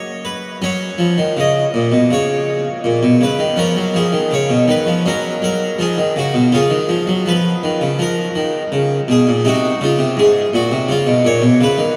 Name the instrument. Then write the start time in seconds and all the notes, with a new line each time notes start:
harpsichord
Already playing: F#2 F#3 A#3 C#4 C#5
0.25 B4
0.62 F#3 C#4 C#5
0.98 F3
1.18 D#3
1.37 C#3 D#5
1.74 A#2
1.92 B2
2.11 C#3 C#5
2.84 A#2
3.03 B2
3.21 C#3 B4
3.39 D#3
3.57 F3 C#4 A#4
3.76 F#3
3.94 F3 G#4
4.12 D#3
4.31 C#3 C#5
4.50 B2
4.68 D#3 B4
4.86 F3
5.06 F#3 C#4 A#4
5.42 F#3 A#4
5.79 F3 G#4
5.98 D#3
6.16 C#3 F#4
6.34 B2
6.52 C#3 F4 G#4
6.70 D#3
6.89 F3
7.07 F#3
7.26 F3 B4
7.63 D#3
7.81 C#3
7.99 F3 A#4
8.36 D#3
8.72 C#3
9.08 B2 G#4
9.27 A#2
9.45 C3 D#4 F#4
9.81 C#3 F4
9.99 C3
10.17 G#2 G#4
10.53 A#2 F#4
10.72 C3
10.89 C#3 F4
11.07 B2
11.25 A#2 C#5
11.42 B2
11.61 C#3 B4
11.78 D#3